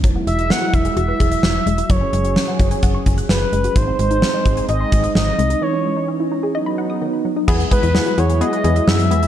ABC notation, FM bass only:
X:1
M:4/4
L:1/16
Q:1/4=129
K:E
V:1 name="FM bass" clef=bass
E,,,2 E,,,3 z E,,,2 E,,,2 E,,,2 E,,,2 E,,,2 | F,,,2 F,,,3 z F,,,2 F,,,2 F,,,2 F,,,2 F,,,2 | G,,,2 G,,,3 z G,,,2 G,,,2 G,,,2 G,,,2 ^B,,,2 | z16 |
E,,2 z E,,2 z E,,3 z E,,2 F,,2 E,,2 |]